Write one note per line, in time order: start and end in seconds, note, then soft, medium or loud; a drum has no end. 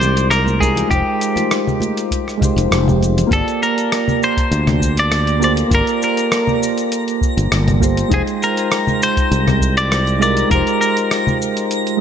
0.00 0.82 C2 medium
0.00 0.56 G#3 medium
0.00 0.57 D#4 medium
0.00 0.58 F4 medium
0.00 0.59 G4 medium
0.00 0.30 C5 loud
0.00 0.60 C5 medium
0.00 closed hi-hat soft
0.00 low conga medium
0.00 shaker medium
0.17 closed hi-hat soft
0.17 shaker soft
0.30 0.62 A#4 loud
0.30 cross-stick medium
0.30 closed hi-hat soft
0.30 shaker soft
0.47 high conga medium
0.47 shaker soft
0.60 0.86 G#3 medium
0.60 0.88 D#4 medium
0.60 0.88 F4 medium
0.60 0.88 G4 medium
0.60 0.90 G#4 medium
0.60 0.89 A#4 medium
0.60 kick medium
0.60 shaker medium
0.77 closed hi-hat soft
0.77 low conga medium
0.77 shaker soft
0.87 1.01 F1 medium
0.87 2.36 G#3 medium
0.87 2.38 D#4 medium
0.87 2.38 F4 medium
0.87 2.67 G4 medium
0.87 kick loud
0.87 closed hi-hat medium
0.92 2.39 G4 medium
0.92 2.40 C5 medium
0.92 shaker soft
1.21 closed hi-hat medium
1.21 shaker medium
1.36 closed hi-hat soft
1.36 high conga medium
1.36 low conga medium
1.36 shaker soft
1.51 cross-stick medium
1.51 closed hi-hat medium
1.51 shaker soft
1.67 low conga medium
1.67 shaker soft
1.80 closed hi-hat soft
1.80 high conga medium
1.80 shaker medium
1.97 closed hi-hat soft
1.97 shaker soft
2.11 kick medium
2.11 closed hi-hat medium
2.11 shaker soft
2.28 cross-stick soft
2.28 shaker soft
2.38 3.26 G#3 medium
2.38 3.27 D#4 medium
2.38 3.28 F4 medium
2.38 kick loud
2.42 3.29 G4 medium
2.42 3.30 C5 loud
2.42 closed hi-hat soft
2.42 low conga medium
2.42 shaker medium
2.56 2.70 F1 loud
2.56 closed hi-hat soft
2.56 shaker soft
2.71 3.22 F1 medium
2.71 cross-stick loud
2.71 closed hi-hat medium
2.71 shaker soft
2.88 low conga medium
2.88 shaker soft
3.01 closed hi-hat soft
3.01 high conga medium
3.01 shaker medium
3.17 closed hi-hat soft
3.17 low conga medium
3.17 shaker soft
3.27 5.36 A#3 medium
3.27 5.37 F4 medium
3.31 3.41 G1 medium
3.31 5.38 G4 medium
3.31 3.62 A4 medium
3.31 5.40 D5 loud
3.31 5.39 A5 medium
3.31 12.01 A#6 medium
3.31 kick loud
3.31 closed hi-hat medium
3.31 shaker soft
3.48 closed hi-hat soft
3.48 shaker soft
3.63 4.24 A#4 medium
3.63 shaker medium
3.78 closed hi-hat soft
3.78 shaker soft
3.92 cross-stick medium
3.92 closed hi-hat medium
3.92 shaker soft
4.08 low conga medium
4.08 shaker soft
4.23 4.99 C5 loud
4.23 shaker medium
4.37 kick loud
4.37 closed hi-hat soft
4.37 shaker soft
4.51 5.62 D2 medium
4.51 closed hi-hat medium
4.51 shaker soft
4.67 cross-stick soft
4.67 closed hi-hat soft
4.67 low conga medium
4.67 shaker soft
4.81 kick medium
4.81 shaker medium
4.97 5.43 D5 loud
4.97 closed hi-hat soft
4.97 shaker soft
5.12 cross-stick loud
5.12 closed hi-hat medium
5.12 shaker soft
5.27 closed hi-hat soft
5.27 shaker soft
5.40 5.67 A#3 medium
5.40 5.67 F4 medium
5.40 5.68 G4 medium
5.40 5.68 A4 medium
5.40 5.69 C5 medium
5.40 shaker medium
5.44 5.52 D5 medium
5.57 closed hi-hat soft
5.57 shaker soft
5.68 5.81 G1 medium
5.68 7.76 A#3 medium
5.68 7.77 F4 medium
5.68 7.78 G4 medium
5.68 kick loud
5.68 closed hi-hat medium
5.72 7.79 A#4 medium
5.72 6.01 A#4 loud
5.72 7.80 D5 medium
5.72 shaker soft
5.87 closed hi-hat soft
5.87 shaker soft
6.02 6.59 A#4 medium
6.02 shaker medium
6.17 closed hi-hat soft
6.17 shaker soft
6.32 cross-stick loud
6.32 closed hi-hat medium
6.32 shaker soft
6.47 low conga medium
6.47 shaker soft
6.63 shaker medium
6.78 closed hi-hat soft
6.78 shaker soft
6.92 closed hi-hat medium
6.92 shaker soft
7.08 closed hi-hat soft
7.08 shaker soft
7.21 kick loud
7.21 shaker medium
7.37 7.51 G1 loud
7.37 closed hi-hat soft
7.37 shaker soft
7.52 8.03 G1 medium
7.52 cross-stick loud
7.52 closed hi-hat medium
7.52 shaker soft
7.68 closed hi-hat soft
7.68 low conga medium
7.68 shaker soft
7.80 8.07 A#3 medium
7.80 8.08 F4 medium
7.80 8.08 G4 medium
7.80 8.09 A4 medium
7.80 8.09 C5 medium
7.80 kick loud
7.80 shaker medium
7.97 closed hi-hat soft
7.97 shaker soft
8.08 8.21 F1 medium
8.08 10.16 G#3 medium
8.08 10.17 D#4 medium
8.08 kick loud
8.08 closed hi-hat medium
8.12 10.18 F4 medium
8.12 8.22 G#4 medium
8.12 10.20 C5 loud
8.12 10.19 G5 medium
8.12 shaker soft
8.27 closed hi-hat soft
8.27 shaker soft
8.42 9.03 A#4 medium
8.42 shaker medium
8.57 closed hi-hat soft
8.57 shaker soft
8.72 cross-stick loud
8.72 closed hi-hat soft
8.72 shaker soft
8.87 low conga medium
8.87 shaker soft
9.02 9.74 C5 medium
9.02 shaker medium
9.17 kick loud
9.17 closed hi-hat soft
9.17 shaker soft
9.31 10.42 C2 medium
9.31 closed hi-hat medium
9.31 shaker soft
9.47 cross-stick soft
9.47 closed hi-hat soft
9.47 low conga medium
9.47 shaker soft
9.61 kick medium
9.61 shaker medium
9.77 10.21 D5 loud
9.77 closed hi-hat soft
9.77 shaker soft
9.92 cross-stick loud
9.92 closed hi-hat medium
9.92 shaker soft
10.07 closed hi-hat soft
10.07 shaker soft
10.19 10.46 G#3 medium
10.19 10.47 D#4 medium
10.19 10.48 F4 medium
10.19 10.48 G4 medium
10.19 10.49 A#4 medium
10.19 10.50 D5 loud
10.19 shaker medium
10.37 closed hi-hat soft
10.37 shaker soft
10.47 10.61 F1 medium
10.47 11.96 G#3 medium
10.47 11.97 D#4 medium
10.47 11.99 F4 medium
10.47 10.80 A#4 medium
10.47 kick loud
10.47 closed hi-hat soft
10.52 11.99 G4 medium
10.52 12.00 C5 loud
10.52 shaker soft
10.67 closed hi-hat soft
10.67 shaker soft
10.81 11.37 A#4 medium
10.81 shaker medium
10.97 closed hi-hat soft
10.97 shaker soft
11.11 cross-stick medium
11.11 closed hi-hat medium
11.11 shaker soft
11.27 low conga medium
11.27 shaker soft
11.42 shaker medium
11.57 closed hi-hat soft
11.57 shaker soft
11.71 closed hi-hat medium
11.71 shaker soft
11.87 closed hi-hat soft
11.87 shaker soft
11.97 12.01 G#3 medium